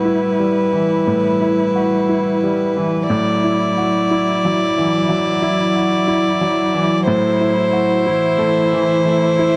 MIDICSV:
0, 0, Header, 1, 5, 480
1, 0, Start_track
1, 0, Tempo, 1011804
1, 1464, Time_signature, 4, 2, 24, 8
1, 1939, Tempo, 996678
1, 4577, End_track
2, 0, Start_track
2, 0, Title_t, "Violin"
2, 0, Program_c, 0, 40
2, 0, Note_on_c, 0, 71, 48
2, 1444, Note_off_c, 0, 71, 0
2, 1468, Note_on_c, 0, 74, 56
2, 3362, Note_off_c, 0, 74, 0
2, 3378, Note_on_c, 0, 72, 76
2, 4577, Note_off_c, 0, 72, 0
2, 4577, End_track
3, 0, Start_track
3, 0, Title_t, "Viola"
3, 0, Program_c, 1, 41
3, 0, Note_on_c, 1, 64, 46
3, 1443, Note_off_c, 1, 64, 0
3, 1467, Note_on_c, 1, 64, 54
3, 3362, Note_off_c, 1, 64, 0
3, 3373, Note_on_c, 1, 64, 71
3, 4577, Note_off_c, 1, 64, 0
3, 4577, End_track
4, 0, Start_track
4, 0, Title_t, "Grand piano"
4, 0, Program_c, 2, 0
4, 0, Control_c, 2, 64, 127
4, 0, Note_on_c, 2, 45, 47
4, 0, Note_on_c, 2, 64, 35
4, 0, Note_on_c, 2, 66, 34
4, 25, Note_off_c, 2, 64, 0
4, 25, Note_on_c, 2, 64, 39
4, 186, Note_on_c, 2, 55, 34
4, 278, Note_off_c, 2, 64, 0
4, 343, Note_on_c, 2, 52, 34
4, 439, Note_off_c, 2, 55, 0
4, 479, Note_off_c, 2, 45, 0
4, 508, Note_on_c, 2, 45, 41
4, 598, Note_off_c, 2, 52, 0
4, 670, Note_on_c, 2, 64, 39
4, 832, Note_off_c, 2, 66, 0
4, 832, Note_on_c, 2, 66, 33
4, 923, Note_off_c, 2, 64, 0
4, 988, Note_off_c, 2, 66, 0
4, 993, Note_on_c, 2, 64, 41
4, 1155, Note_on_c, 2, 55, 40
4, 1244, Note_off_c, 2, 64, 0
4, 1312, Note_on_c, 2, 52, 39
4, 1405, Note_off_c, 2, 55, 0
4, 1448, Note_off_c, 2, 45, 0
4, 1468, Note_off_c, 2, 52, 0
4, 1469, Note_on_c, 2, 45, 55
4, 1472, Control_c, 2, 64, 0
4, 1563, Control_c, 2, 64, 127
4, 1633, Note_on_c, 2, 64, 41
4, 1792, Note_on_c, 2, 66, 38
4, 1882, Note_off_c, 2, 64, 0
4, 1946, Note_off_c, 2, 66, 0
4, 1951, Note_on_c, 2, 64, 47
4, 2113, Note_on_c, 2, 54, 44
4, 2204, Note_off_c, 2, 64, 0
4, 2271, Note_on_c, 2, 52, 45
4, 2364, Note_off_c, 2, 54, 0
4, 2407, Note_off_c, 2, 45, 0
4, 2422, Note_on_c, 2, 54, 49
4, 2522, Note_off_c, 2, 52, 0
4, 2583, Note_on_c, 2, 64, 53
4, 2677, Note_off_c, 2, 54, 0
4, 2742, Note_on_c, 2, 66, 43
4, 2837, Note_off_c, 2, 64, 0
4, 2897, Note_on_c, 2, 64, 52
4, 2901, Note_off_c, 2, 66, 0
4, 3058, Note_on_c, 2, 54, 51
4, 3155, Note_off_c, 2, 64, 0
4, 3218, Note_on_c, 2, 52, 51
4, 3315, Note_off_c, 2, 54, 0
4, 3377, Note_on_c, 2, 45, 71
4, 3378, Note_off_c, 2, 52, 0
4, 3387, Control_c, 2, 64, 0
4, 3473, Control_c, 2, 64, 127
4, 3538, Note_on_c, 2, 64, 49
4, 3693, Note_on_c, 2, 66, 46
4, 3794, Note_off_c, 2, 64, 0
4, 3855, Note_off_c, 2, 66, 0
4, 3856, Note_on_c, 2, 64, 52
4, 4009, Note_on_c, 2, 57, 55
4, 4113, Note_off_c, 2, 64, 0
4, 4174, Note_on_c, 2, 52, 53
4, 4270, Note_off_c, 2, 57, 0
4, 4318, Note_off_c, 2, 45, 0
4, 4331, Note_on_c, 2, 57, 47
4, 4433, Note_off_c, 2, 52, 0
4, 4493, Note_on_c, 2, 64, 58
4, 4577, Note_off_c, 2, 57, 0
4, 4577, Note_off_c, 2, 64, 0
4, 4577, End_track
5, 0, Start_track
5, 0, Title_t, "Cello"
5, 0, Program_c, 3, 42
5, 0, Note_on_c, 3, 55, 44
5, 1444, Note_off_c, 3, 55, 0
5, 1465, Note_on_c, 3, 54, 52
5, 3855, Note_on_c, 3, 52, 66
5, 3862, Note_off_c, 3, 54, 0
5, 4577, Note_off_c, 3, 52, 0
5, 4577, End_track
0, 0, End_of_file